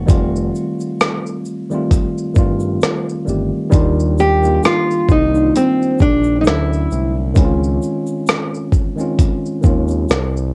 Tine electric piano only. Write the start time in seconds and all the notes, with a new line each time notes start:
Already playing: C#3 F#3 G#3 A#3
0.06 D#3 G3 A3 C4
0.10 F4
1.70 D#3 G3 A3 C4
1.75 F4
2.34 D#3 G3 A3 C4
2.39 F4
3.25 D#3 G3 A3 C4
3.29 G4
3.70 D#3 G3 A#3 D4
3.75 F4
4.42 D#3 G3 A#3 D4
4.47 F4
5.32 D#3 G3 A#3 D4
5.36 D#4
5.43 F4
6.42 D3 F#3 A3 C#4
6.47 E4
7.34 D#3 G#3 C4 C#4
7.38 E4
7.45 F4
8.96 D#3 G#3 C4 C#4
9.01 F4
9.61 D#3 G#3 C4 C#4
9.66 F4